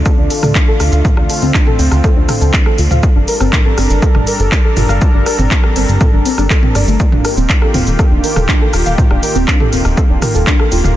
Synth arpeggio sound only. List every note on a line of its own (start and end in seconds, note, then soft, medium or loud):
0.06 0.11 A4 medium
0.18 0.30 D4 medium
0.30 0.42 A4 medium
0.43 0.55 A4 medium
0.55 0.67 D4 medium
0.68 0.73 A4 loud
0.80 0.85 F4 medium
0.92 0.97 F5 medium
1.17 1.29 D4 medium
1.30 1.41 A4 medium
1.42 1.50 C4 loud
1.54 1.66 D4 medium
1.67 1.72 A4 loud
1.79 1.84 C4 medium
2.04 2.09 A4 medium
2.16 2.28 D4 medium
2.29 2.40 A4 medium
2.41 2.53 A4 medium
2.54 2.65 D4 medium
2.66 2.71 A4 loud
2.78 2.83 F4 medium
2.91 2.96 F5 medium
3.16 3.27 D4 medium
3.28 3.40 A#4 medium
3.40 3.49 C4 loud
3.53 3.65 D4 medium
3.65 3.70 A4 loud
3.78 3.83 C4 medium
4.03 4.08 A4 medium
4.15 4.27 D4 medium
4.27 4.39 A#4 medium
4.40 4.51 A4 medium
4.52 4.64 D4 medium
4.64 4.69 A4 loud
4.77 4.82 F4 medium
4.89 4.94 F5 medium
5.14 5.26 D4 medium
5.26 5.38 A#4 medium
5.39 5.47 C4 loud
5.51 5.63 D4 medium
5.64 5.69 A4 loud
5.76 5.81 C4 medium
6.01 6.06 A4 medium
6.13 6.25 D4 medium
6.25 6.30 C4 medium
6.38 6.43 D4 loud
6.50 6.59 A4 medium
6.63 6.71 C4 medium
6.75 6.83 D5 medium
6.88 6.99 A3 medium
7.12 7.24 D4 medium
7.25 7.37 A#4 medium
7.37 7.45 C4 loud
7.49 7.61 D4 medium
7.62 7.67 A4 loud
7.74 7.79 C4 medium
7.99 8.04 A4 medium
8.11 8.23 D4 medium
8.24 8.36 A#4 medium
8.36 8.48 A4 medium
8.48 8.60 D4 medium
8.61 8.66 A4 loud
8.73 8.78 F4 medium
8.86 8.91 F5 medium
9.10 9.22 D4 medium
9.23 9.35 A#4 medium
9.35 9.44 C4 loud
9.48 9.60 D4 medium
9.60 9.65 A4 loud
9.72 9.78 C4 medium
9.97 10.02 A4 medium
10.10 10.22 D4 medium
10.22 10.34 A#4 medium
10.35 10.46 A4 medium
10.47 10.59 D4 medium
10.59 10.64 A4 loud
10.72 10.77 F4 medium
10.84 10.89 F5 medium